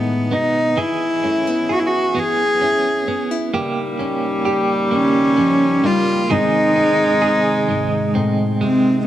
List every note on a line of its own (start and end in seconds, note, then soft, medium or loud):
0.00 0.31 A2 medium
0.00 0.77 D#3 medium
0.00 0.73 G#3 medium
0.00 0.30 B3 medium
0.00 0.34 B3 medium
0.00 0.73 B3 soft
0.00 0.73 D#4 medium
0.00 0.87 D#4 soft
0.00 0.73 G#4 medium
0.00 0.76 G#4 soft
0.31 0.77 B2 medium
0.31 0.87 B3 medium
0.31 0.80 D#4 medium
0.77 1.61 C#3 medium
0.77 3.54 E3 medium
0.77 1.74 E4 medium
0.77 1.68 G#4 medium
1.24 1.47 A3 soft
1.24 2.60 C#4 soft
1.47 3.54 B3 soft
1.69 2.62 E4 medium
1.69 1.81 F#4 medium
1.69 3.54 G#4 medium
1.79 1.88 E4 medium
1.86 2.20 F#4 medium
2.15 2.99 E3 medium
2.15 3.07 B3 medium
2.15 3.21 G#4 medium
2.61 3.63 C#4 soft
2.61 3.07 E4 medium
3.08 3.53 B3 soft
3.08 3.31 C#4 medium
3.31 3.54 E4 soft
3.52 6.27 C#3 medium
3.52 4.37 D#3 medium
3.52 6.25 G3 loud
3.52 6.27 G3 medium
3.52 4.90 A#3 medium
3.52 6.28 A#3 medium
3.52 6.27 D#4 medium
3.52 4.44 G4 medium
3.99 5.36 C#4 soft
3.99 6.25 C#4 medium
4.45 6.30 G4 medium
4.45 6.24 G4 medium
4.91 5.38 D#3 medium
4.91 5.83 A#3 medium
4.91 5.87 C#4 medium
5.37 5.84 F3 medium
5.37 6.39 C#4 soft
5.84 6.30 G3 medium
5.84 6.39 A#3 soft
5.84 6.32 F4 medium
6.28 7.13 G#2 medium
6.28 9.05 C3 medium
6.28 9.05 D#3 medium
6.28 9.07 D#3 medium
6.28 8.57 G#3 loud
6.28 9.05 G#3 medium
6.28 9.03 G#3 medium
6.28 6.76 C4 medium
6.28 9.05 D#4 medium
6.28 8.15 D#4 medium
6.28 9.03 D#4 medium
6.28 7.21 G#4 medium
6.33 7.22 G#4 medium
6.76 8.14 C4 soft
6.76 9.03 C4 medium
7.22 9.07 G#4 medium
7.22 9.03 G#4 medium
7.68 8.15 G#2 medium
7.68 8.60 G#3 medium
8.15 8.62 A2 medium
8.15 9.07 C4 soft
8.61 9.07 C3 medium
8.61 9.07 G#3 medium
8.61 8.99 C4 medium